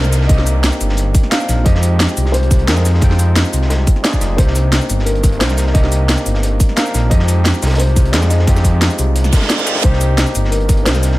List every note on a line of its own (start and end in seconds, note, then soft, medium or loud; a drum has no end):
0.00 0.28 C2 medium
0.00 0.27 A#3 medium
0.00 0.28 C4 medium
0.00 1.32 D4 medium
0.00 0.30 D#4 medium
0.00 0.31 G4 loud
0.00 0.28 A#4 loud
0.00 0.26 C5 loud
0.00 snare soft
0.00 downlifter medium
0.04 snare medium
0.04 cabasa soft
0.12 snare soft
0.12 closed hi-hat loud
0.12 closed hi-hat medium
0.12 cabasa medium
0.21 snare soft
0.27 0.71 C2 loud
0.27 1.28 A#3 medium
0.27 1.29 C4 medium
0.27 1.30 D#4 medium
0.27 0.93 D#5 loud
0.27 kick loud
0.27 closed hi-hat medium
0.31 1.31 G4 loud
0.38 snare soft
0.46 closed hi-hat medium
0.46 cabasa medium
0.64 snare loud
0.64 closed hi-hat medium
0.72 cabasa soft
0.81 1.13 G1 loud
0.81 closed hi-hat medium
0.81 cabasa medium
0.89 snare soft
0.97 closed hi-hat medium
1.15 kick loud
1.15 closed hi-hat medium
1.15 cabasa medium
1.23 snare soft
1.30 1.63 A#3 loud
1.30 1.63 C4 medium
1.30 1.64 D4 medium
1.30 1.64 D#4 medium
1.30 1.64 A#4 loud
1.30 1.62 F5 loud
1.30 snare loud
1.30 closed hi-hat medium
1.41 cabasa soft
1.49 1.56 A#1 medium
1.49 snare soft
1.49 closed hi-hat medium
1.49 cabasa medium
1.57 1.65 A#1 medium
1.64 2.07 F2 loud
1.64 2.65 G#3 loud
1.64 2.65 C4 medium
1.64 2.66 D#4 medium
1.64 2.67 F4 medium
1.64 2.35 D#5 loud
1.64 kick loud
1.64 closed hi-hat medium
1.68 2.67 G4 loud
1.75 snare medium
1.83 closed hi-hat medium
1.83 cabasa medium
1.99 snare loud
1.99 closed hi-hat medium
2.09 cabasa soft
2.17 2.69 C2 loud
2.17 closed hi-hat medium
2.17 cabasa medium
2.26 snare soft
2.32 2.68 C5 loud
2.32 closed hi-hat medium
2.43 closed hi-hat soft
2.51 kick loud
2.51 closed hi-hat medium
2.51 cabasa medium
2.59 closed hi-hat soft
2.66 3.01 F2 medium
2.66 2.99 G#3 medium
2.66 3.00 C4 medium
2.66 3.00 D#4 medium
2.66 3.00 F4 medium
2.66 3.01 G#4 loud
2.66 2.85 A#4 medium
2.66 snare loud
2.66 closed hi-hat medium
2.77 snare medium
2.77 snare soft
2.77 cabasa soft
2.83 3.48 G#4 medium
2.83 snare soft
2.83 closed hi-hat medium
2.83 cabasa medium
2.94 snare soft
3.00 3.43 F2 loud
3.00 4.01 G#3 medium
3.00 4.02 C4 medium
3.00 4.02 D#4 medium
3.00 4.03 F4 medium
3.00 kick loud
3.00 closed hi-hat medium
3.04 4.03 G5 loud
3.11 snare soft
3.19 closed hi-hat medium
3.19 cabasa medium
3.36 snare loud
3.36 closed hi-hat medium
3.45 cabasa soft
3.53 3.86 C2 medium
3.53 closed hi-hat medium
3.53 cabasa medium
3.62 snare soft
3.70 snare loud
3.70 closed hi-hat medium
3.87 kick loud
3.87 closed hi-hat medium
3.87 cabasa medium
3.96 snare soft
4.03 4.36 G#3 medium
4.03 4.36 C4 medium
4.03 4.36 D#4 medium
4.03 4.37 F4 medium
4.03 4.37 G#4 loud
4.03 4.39 D5 medium
4.03 snare loud
4.03 closed hi-hat medium
4.13 kick medium
4.13 cabasa soft
4.21 4.37 F1 medium
4.21 snare soft
4.21 closed hi-hat medium
4.21 cabasa medium
4.36 4.80 C2 loud
4.36 5.38 A#3 medium
4.36 5.38 C4 medium
4.36 5.39 D4 medium
4.36 5.39 D#4 medium
4.36 4.85 C5 loud
4.36 kick loud
4.36 closed hi-hat medium
4.40 5.40 G4 loud
4.47 snare soft
4.55 closed hi-hat medium
4.55 cabasa medium
4.72 snare loud
4.72 closed hi-hat medium
4.81 cabasa soft
4.89 5.42 G1 medium
4.89 closed hi-hat medium
4.89 cabasa medium
4.99 snare soft
5.05 5.41 A#4 medium
5.05 closed hi-hat medium
5.15 closed hi-hat soft
5.24 kick loud
5.24 closed hi-hat medium
5.24 cabasa medium
5.32 closed hi-hat soft
5.39 5.73 C2 medium
5.39 5.71 A#3 medium
5.39 5.73 C4 medium
5.39 5.73 D4 medium
5.39 5.73 D#4 medium
5.39 5.73 A#4 loud
5.39 5.72 C5 loud
5.39 snare loud
5.39 closed hi-hat medium
5.49 snare medium
5.49 snare soft
5.49 cabasa soft
5.57 snare soft
5.57 closed hi-hat medium
5.57 cabasa medium
5.67 snare soft
5.72 6.16 C2 loud
5.72 6.74 A#3 medium
5.72 6.74 C4 medium
5.72 6.76 D#4 medium
5.72 6.38 D#5 loud
5.72 kick loud
5.72 closed hi-hat medium
5.77 6.76 G4 loud
5.83 snare soft
5.92 closed hi-hat medium
5.92 cabasa medium
6.09 snare loud
6.09 closed hi-hat loud
6.09 closed hi-hat medium
6.18 cabasa soft
6.26 6.59 G1 loud
6.26 closed hi-hat medium
6.26 cabasa medium
6.34 snare soft
6.43 closed hi-hat medium
6.60 kick loud
6.60 closed hi-hat medium
6.60 cabasa medium
6.69 snare soft
6.76 7.09 A#3 medium
6.76 7.09 C4 medium
6.76 7.09 D4 medium
6.76 7.09 D#4 medium
6.76 7.10 A#4 loud
6.76 7.08 F5 loud
6.76 snare loud
6.76 closed hi-hat medium
6.86 cabasa soft
6.94 7.02 A#1 medium
6.94 snare soft
6.94 closed hi-hat medium
6.94 cabasa medium
7.03 7.10 A#1 medium
7.09 7.52 F2 loud
7.09 8.10 G#3 medium
7.09 8.11 C4 medium
7.09 8.11 D#4 medium
7.09 8.12 F4 medium
7.09 7.81 D#5 loud
7.09 kick loud
7.09 closed hi-hat medium
7.13 8.13 G4 loud
7.20 snare soft
7.28 closed hi-hat medium
7.28 cabasa medium
7.44 snare loud
7.44 closed hi-hat medium
7.54 cabasa soft
7.62 8.15 C2 medium
7.62 snare medium
7.62 closed hi-hat loud
7.62 closed hi-hat medium
7.62 cabasa medium
7.67 snare medium
7.67 closed hi-hat medium
7.70 snare medium
7.70 closed hi-hat medium
7.74 snare medium
7.74 closed hi-hat medium
7.78 8.14 C5 loud
7.78 closed hi-hat medium
7.87 closed hi-hat soft
7.96 kick loud
7.96 closed hi-hat medium
7.96 cabasa medium
8.05 closed hi-hat soft
8.12 8.46 F2 medium
8.12 8.44 G#3 medium
8.12 8.45 C4 medium
8.12 8.46 D#4 medium
8.12 8.46 F4 medium
8.12 8.46 G#4 loud
8.12 8.29 D5 medium
8.12 snare loud
8.12 closed hi-hat medium
8.22 snare medium
8.22 snare soft
8.22 cabasa soft
8.29 8.94 D#5 medium
8.29 snare soft
8.29 closed hi-hat medium
8.29 closed hi-hat loud
8.29 cabasa medium
8.39 snare soft
8.45 8.89 F2 loud
8.45 9.47 G#3 medium
8.45 9.47 C4 medium
8.45 9.48 D#4 medium
8.45 9.48 F4 medium
8.45 kick loud
8.45 closed hi-hat medium
8.50 9.49 G4 loud
8.56 snare soft
8.56 cabasa soft
8.64 kick medium
8.64 closed hi-hat medium
8.64 closed hi-hat loud
8.64 cabasa medium
8.82 snare loud
8.82 closed hi-hat medium
8.90 cabasa soft
8.99 9.31 C2 loud
8.99 closed hi-hat medium
8.99 closed hi-hat loud
8.99 cabasa medium
9.16 closed hi-hat loud
9.16 closed hi-hat medium
9.16 reverse cymbal medium
9.24 snare medium
9.24 cabasa soft
9.33 kick loud
9.33 snare medium
9.33 closed hi-hat medium
9.33 closed hi-hat loud
9.33 cabasa medium
9.36 snare loud
9.36 closed hi-hat medium
9.41 snare medium
9.41 snare soft
9.41 closed hi-hat medium
9.45 9.81 D5 medium
9.45 snare medium
9.45 closed hi-hat medium
9.49 snare loud
9.49 closed hi-hat medium
9.57 9.64 G#3 loud
9.57 9.64 C4 medium
9.57 9.65 D#4 medium
9.57 9.65 F4 medium
9.57 9.65 A#4 loud
9.57 snare medium
9.57 closed hi-hat medium
9.57 cabasa soft
9.62 9.81 G#3 loud
9.62 9.81 C4 medium
9.62 snare medium
9.62 closed hi-hat medium
9.66 9.82 D#4 medium
9.66 9.82 F4 medium
9.66 9.82 G4 loud
9.66 closed hi-hat loud
9.66 closed hi-hat medium
9.66 cabasa medium
9.75 snare loud
9.75 closed hi-hat medium
9.81 10.25 C2 loud
9.81 10.83 A#3 loud
9.81 10.83 C4 medium
9.81 10.84 D4 medium
9.81 10.85 D#4 medium
9.81 10.31 C5 medium
9.81 kick loud
9.81 closed hi-hat medium
9.86 10.85 G4 loud
9.93 snare soft
10.01 closed hi-hat medium
10.01 cabasa medium
10.18 snare loud
10.18 closed hi-hat medium
10.27 cabasa soft
10.35 10.87 G1 medium
10.35 closed hi-hat loud
10.35 closed hi-hat medium
10.35 cabasa medium
10.45 snare soft
10.51 10.83 A#4 medium
10.51 closed hi-hat medium
10.60 closed hi-hat soft
10.69 kick loud
10.69 closed hi-hat medium
10.69 cabasa medium
10.77 closed hi-hat soft
10.85 11.19 C2 medium
10.85 11.17 A#3 loud
10.85 11.18 C4 medium
10.85 11.18 D4 medium
10.85 11.18 D#4 medium
10.85 11.19 A#4 loud
10.85 11.17 C5 loud
10.85 snare loud
10.85 closed hi-hat medium
10.95 snare medium
10.95 cabasa soft
11.03 snare soft
11.03 closed hi-hat loud
11.03 closed hi-hat medium
11.03 cabasa medium
11.12 snare soft